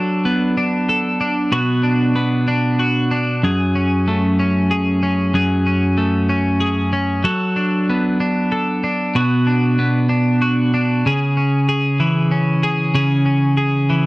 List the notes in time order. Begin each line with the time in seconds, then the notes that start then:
Already playing: F#3 D4 A4
0.25 B3
0.57 D4
0.89 A4
1.21 D4
1.52 B2 F#4
1.83 D4
2.16 B3
2.48 D4
2.79 F#4
3.11 D4
3.43 F#2 G#4
3.75 C#4
4.08 A3
4.39 C#4
4.71 G#4
5.03 C#4
5.34 F#2 G#4
5.66 C#4
5.98 A3
6.29 C#4
6.60 G#4
6.93 C#4
7.24 F#3 A4
7.56 D4
7.89 B3
8.20 D4
8.52 A4
8.84 D4
9.15 B2 F#4
9.47 D4
9.79 B3
10.09 D4
10.42 F#4
10.74 D4
11.06 C#3 G#4
11.37 C#4
11.69 G#4
12.00 E3
12.32 C#4
12.63 G#4
12.95 C#3 G#4
13.26 C#4
13.57 G#4
13.90 E3